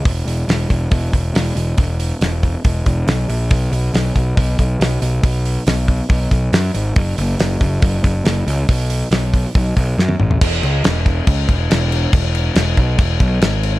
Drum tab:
CC |----------------|----------------|----------------|----------------|
HH |o-o-o-o-o-o-o-o-|o-o-o-o-o-o-o-o-|o-o-o-o-o-o-o-o-|o-o-o-o-o-o-o-o-|
SD |----o-------o---|----o-------o---|----o-------o---|----o-------o---|
T1 |----------------|----------------|----------------|----------------|
T2 |----------------|----------------|----------------|----------------|
FT |----------------|----------------|----------------|----------------|
BD |o-----o-o-o-----|o-----o-o-o-----|o-----o-o-o-----|o-----o-o-o-----|

CC |----------------|----------------|x-x-x-x-x-x-x-x-|x-x-x-x-x-x-x-x-|
HH |o-o-o-o-o-o-o-o-|o-o-o-o-o-o-----|----------------|----------------|
SD |----o-------o---|----o-------o---|----o-------o---|----o-------o---|
T1 |----------------|-------------o--|----------------|----------------|
T2 |----------------|--------------o-|----------------|----------------|
FT |----------------|---------------o|----------------|----------------|
BD |o-----o-o-o-----|o-----o-o-o-----|o-----o-o-o-----|o-----o-o-o-----|